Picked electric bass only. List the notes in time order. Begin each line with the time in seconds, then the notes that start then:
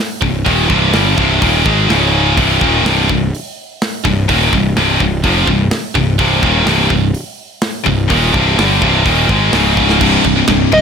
0.22 C1
0.46 D#1
0.70 C1
0.93 G1
1.18 C1
1.42 D#1
1.66 G#1
1.89 C#1
2.37 C1
2.62 D#1
2.83 C1
3.09 C1
4.05 C1
4.29 D#1
4.52 C1
4.76 C1
5.00 C1
5.24 F1
5.47 C1
5.95 C1
6.19 C1
6.42 D#1
6.66 C1
6.90 C1
7.86 C1
8.10 D#1
8.34 C1
8.57 G1
8.82 C1
9.05 D#1
9.29 G#1
9.53 C#1
10.01 C1
10.25 C1
10.49 C1
10.73 C1